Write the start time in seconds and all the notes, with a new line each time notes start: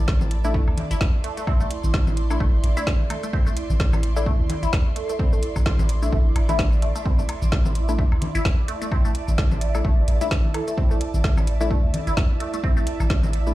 Already playing: E4 D5 A5
0.08 C6, kick, snare
0.21 A1, low conga, shaker
0.31 closed hi-hat
0.44 A3 D4 E4, shaker
0.54 A3, kick
0.68 D2, high woodblock
0.77 closed hi-hat, high conga
0.91 G1 E4, closed hi-hat, shaker
1.01 E2, kick, snare
1.24 A3, closed hi-hat
1.37 A3, closed hi-hat, shaker
1.47 C4, kick, high woodblock
1.61 A1 A3, shaker
1.71 closed hi-hat
1.84 A1, high conga, shaker
1.94 kick, snare
2.07 A1, low conga, shaker
2.17 closed hi-hat
2.30 A3 D4 E4, high woodblock, shaker
2.40 G1 A3, kick
2.64 A1, closed hi-hat
2.77 A3 D4 E4, closed hi-hat, shaker
2.87 kick, snare
3.00 high conga
3.10 A3, closed hi-hat, high woodblock
3.23 A3, closed hi-hat, shaker
3.33 C4, kick
3.47 A1 A3, shaker
3.57 closed hi-hat
3.70 A1, high conga, shaker
3.80 kick, snare
3.93 A1, low conga, high woodblock, shaker
4.03 closed hi-hat
4.16 A3 D4 E4, shaker
4.26 A3, kick
4.40 D2
4.50 closed hi-hat, high conga
4.63 G1 E4, closed hi-hat, shaker
4.73 E2, kick, snare, high woodblock
4.96 A3, closed hi-hat
5.09 A3, closed hi-hat, shaker
5.19 C4, kick
5.33 A1 A3, shaker
5.43 closed hi-hat
5.56 A1, kick, high conga, high woodblock, shaker
5.66 kick, snare
5.79 A1, low conga, shaker
5.89 closed hi-hat
6.02 A3 D4 E4, shaker
6.12 G1 A3, kick
6.36 A1, closed hi-hat, high woodblock
6.49 A3 D4 E4, closed hi-hat, high conga, shaker
6.59 kick, snare
6.72 high conga, shaker
6.82 A3, closed hi-hat
6.96 A3, closed hi-hat, shaker
7.05 C4 E5, kick
7.19 A1 A3, shaker
7.29 closed hi-hat, high woodblock
7.42 A1, high conga, shaker
7.52 kick, snare
7.56 A5
7.65 A1, low conga, shaker
7.75 closed hi-hat
7.89 A3 D4 E4, shaker
7.98 A3, kick
8.12 D2, high woodblock
8.22 closed hi-hat, high conga
8.35 G1 E4, closed hi-hat, shaker
8.45 E2, kick, snare
8.68 A3, closed hi-hat
8.82 A3, closed hi-hat, shaker
8.91 C4, kick, high woodblock
9.05 A1 A3, shaker
9.15 closed hi-hat
9.28 A1, high conga, shaker
9.38 kick, snare
9.51 A1, low conga, shaker
9.61 closed hi-hat
9.75 A3 D4 E4, high woodblock, shaker
9.85 G1 A3, kick
10.08 A1, closed hi-hat
10.21 A3 D4 E4, closed hi-hat, shaker
10.31 kick, snare
10.44 high conga
10.54 A3, closed hi-hat, high woodblock
10.68 A3, closed hi-hat, shaker
10.78 C4, kick
10.91 A1 A3, shaker
11.01 closed hi-hat
11.14 A1, high conga, shaker
11.24 kick, snare
11.37 A1, low conga, high woodblock, shaker
11.47 closed hi-hat
11.61 A3 D4 E4, shaker
11.71 A3, kick
11.84 D2
11.94 closed hi-hat, high conga
12.07 G1 E4, closed hi-hat, shaker
12.17 E2, kick, snare, high woodblock
12.40 A3, closed hi-hat
12.54 A3, closed hi-hat, shaker
12.64 C4, kick
12.77 A1 A3, shaker
12.87 closed hi-hat
13.00 A1, high conga, high woodblock, shaker
13.10 kick, snare
13.23 A1, low conga, shaker
13.33 closed hi-hat
13.47 A3 D4 E4, shaker